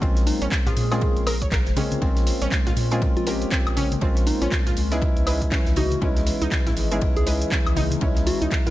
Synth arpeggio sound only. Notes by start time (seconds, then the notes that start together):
0.02 C4
0.42 C#4
0.67 F4
0.92 G#4
1.27 A#4
1.42 C#5
1.52 A#4
1.77 C#4
2.02 C4
2.42 C#4
2.67 F4
2.92 G#4
3.27 A#4
3.52 C4
3.77 C#4
4.02 C4
4.42 C#4
4.67 F4
4.92 G#4
5.27 B4
5.52 C#4
5.77 D#4
6.02 C#4
6.42 D#4
6.67 E4
6.92 G#4
7.27 B4
7.52 C#4
7.77 D#4
8.02 C#4
8.42 D#4
8.67 E4